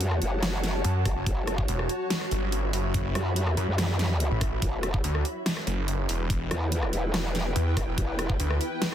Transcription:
Already playing: wobble bass F#2, ambient pad F#4 C#5 F#5 A5
0.01 closed hi-hat
0.11 cross-stick
0.22 wobble bass F#1, closed hi-hat
0.43 cross-stick, snare, closed hi-hat
0.64 snare, closed hi-hat
0.84 detuned saw bass F#2, closed hi-hat
1.05 wobble bass F#1, kick, cross-stick, open hi-hat
1.16 detuned saw bass F#1
1.26 wobble bass F#1, kick, closed hi-hat
1.37 ambient pad B5
1.47 cross-stick, closed hi-hat
1.51 ambient pad E5
1.58 kick
1.68 detuned saw bass E1, closed hi-hat
1.79 cross-stick
1.89 closed hi-hat
2.10 snare, closed hi-hat
2.21 cross-stick
2.31 detuned saw bass G1, closed hi-hat
2.52 closed hi-hat
2.73 detuned saw bass F#1, open hi-hat
2.94 kick, closed hi-hat
3.15 wobble bass F#2, cross-stick, closed hi-hat
3.36 closed hi-hat
3.47 cross-stick
3.57 detuned saw bass F#2, closed hi-hat
3.68 wobble bass F#2
3.78 cross-stick, snare, closed hi-hat
3.99 snare, closed hi-hat
4.20 closed hi-hat
4.31 detuned saw bass A1
4.41 kick, cross-stick, open hi-hat
4.62 wobble bass E1, ambient pad E4, kick, closed hi-hat
4.77 ambient pad B4
4.83 cross-stick, closed hi-hat
4.94 kick
5.04 detuned saw bass D2, closed hi-hat
5.15 cross-stick
5.25 closed hi-hat
5.36 ambient pad G5
5.46 snare, closed hi-hat
5.57 cross-stick
5.67 detuned saw bass F#1, closed hi-hat
5.88 closed hi-hat
6.09 detuned saw bass E1, open hi-hat
6.30 kick, closed hi-hat
6.51 wobble bass E2, cross-stick, closed hi-hat
6.72 closed hi-hat
6.83 cross-stick
6.93 wobble bass E1, closed hi-hat
7.14 cross-stick, snare, closed hi-hat
7.35 snare, closed hi-hat
7.56 detuned saw bass E2, closed hi-hat
7.77 wobble bass E1, kick, cross-stick, open hi-hat
7.88 detuned saw bass E1
7.98 wobble bass E1, kick, closed hi-hat
8.19 cross-stick, closed hi-hat
8.30 kick
8.40 detuned saw bass D2, closed hi-hat
8.51 cross-stick
8.61 closed hi-hat
8.82 snare, closed hi-hat

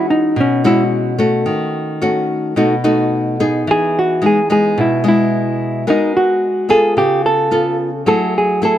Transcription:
Already playing: nylon-string guitar E3 G#3 C#4 F#4, hollow-body jazz guitar E4
0.10 hollow-body jazz guitar D#4
0.36 nylon-string guitar B2
0.41 hollow-body jazz guitar C#4
0.64 nylon-string guitar G#3 C#4 F#4, hollow-body jazz guitar E4
1.18 nylon-string guitar A3 C#4 F#4
1.46 nylon-string guitar D#3
2.01 nylon-string guitar A3 C#4 F#4
2.56 nylon-string guitar B2 A3 D#4 F#4
2.84 nylon-string guitar A3 D#4 F#4
3.40 nylon-string guitar B3 D#4 G#4
3.67 nylon-string guitar E3, hollow-body jazz guitar G#4
3.99 hollow-body jazz guitar F#4
4.22 nylon-string guitar G#3 B3 D#4
4.26 hollow-body jazz guitar G#4
4.50 nylon-string guitar G#3 B3 D#4, hollow-body jazz guitar G#4
4.78 nylon-string guitar B2, hollow-body jazz guitar E4
5.04 nylon-string guitar G#3 B3
5.08 hollow-body jazz guitar E4
5.87 nylon-string guitar G#3 B3 F#4 A#4, hollow-body jazz guitar D#4
6.17 hollow-body jazz guitar F#4
6.69 nylon-string guitar B3 F4 A4, hollow-body jazz guitar G#4
6.97 nylon-string guitar C#3, hollow-body jazz guitar G4
7.26 hollow-body jazz guitar A4
7.51 nylon-string guitar B3 F4 A4
8.06 nylon-string guitar F#3 A3 E4 G#4, hollow-body jazz guitar A4
8.38 hollow-body jazz guitar G#4
8.62 nylon-string guitar A3 E4 G#4, hollow-body jazz guitar A4

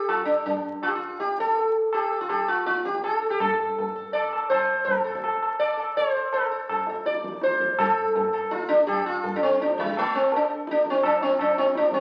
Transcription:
0.09 sitar F4, tabla na, tabla ge
0.25 sitar D4
0.46 sitar D4, tabla tin, tabla ge
0.83 sitar F4, tabla na
0.88 sitar G4
0.95 sitar F4
1.20 sitar G4, tabla te
1.38 sitar A4, tabla te
1.56 tabla tin
1.93 sitar G4, tabla na
2.12 sitar A4
2.21 sitar F4
2.29 sitar G4, tabla na, tabla ge
2.48 sitar F4
2.66 sitar F4, tabla te
2.76 tabla te
2.85 sitar G4, tabla ke
2.95 tabla te
3.04 sitar A4, tabla na
3.22 sitar A4
3.30 sitar G4
3.40 sitar A4, tabla na, tabla ge
3.60 sitar A4
3.78 sitar A4, tabla tin, tabla ge
3.96 sitar A4
4.13 sitar D5, tabla na
4.33 tabla na
4.50 sitar C5, tabla na, tabla ge
4.85 sitar A4, tabla tin, tabla ge
5.04 sitar A4, tabla na
5.15 tabla ke
5.24 tabla na
5.42 tabla na
5.59 sitar D5, tabla na
5.77 sitar A4, tabla na
5.97 sitar C5, tabla tin
6.16 sitar A4
6.33 sitar A4, tabla na
6.51 sitar A4
6.69 sitar A4, tabla na, tabla ge
6.87 sitar A4, tabla te
7.06 sitar D5, tabla te
7.15 tabla te
7.24 tabla ke
7.32 tabla te
7.42 sitar C5, tabla te
7.51 tabla te
7.60 sitar A4, tabla ke
7.70 tabla te
7.79 sitar A4, tabla na, tabla ge
8.16 sitar A4, tabla tin, tabla ge
8.33 sitar A4, tabla na
8.51 sitar F4, tabla te
8.61 tabla te
8.69 sitar D4, tabla ke
8.79 tabla te
8.87 sitar G4, tabla na, tabla ge
9.06 sitar F4
9.23 sitar A4, tabla tin, tabla ge
9.36 sitar D4
9.43 sitar C4
9.61 sitar D4, tabla te
9.70 tabla te
9.79 sitar G3, tabla ke
9.89 tabla te
9.97 sitar A3, tabla na
10.15 sitar C4
10.32 tabla tin
10.36 sitar D4
10.50 sitar A4
10.67 sitar D4, tabla te
10.77 tabla te
10.86 tabla ke
10.90 sitar C4
10.94 tabla te
11.03 sitar D4, tabla na, tabla ge
11.21 sitar C4, tabla te
11.39 sitar D4, tabla na, tabla ge
11.58 sitar C4, tabla te
11.75 sitar D4, tabla te
11.83 tabla te
11.92 sitar C4, tabla ke

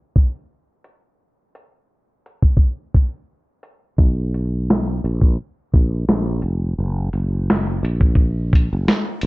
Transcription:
0.16 kick, closed hi-hat
0.84 closed hi-hat
1.55 closed hi-hat
2.26 closed hi-hat
2.42 kick
2.57 kick
2.94 kick, closed hi-hat
3.63 closed hi-hat
3.98 fretless electric bass B1, kick
4.34 closed hi-hat
4.70 snare
5.04 fretless electric bass A#1, closed hi-hat
5.21 kick
5.74 fretless electric bass A#1, kick, closed hi-hat
6.09 fretless electric bass A#1, snare
6.42 fretless electric bass F1, closed hi-hat
6.78 fretless electric bass F#1
7.13 fretless electric bass F#1, closed hi-hat
7.50 snare
7.83 fretless electric bass A#1, closed hi-hat
8.01 kick
8.15 kick
8.53 kick, closed hi-hat
8.73 fretless electric bass F#1
8.88 snare
9.21 fretless electric bass A#1, closed hi-hat

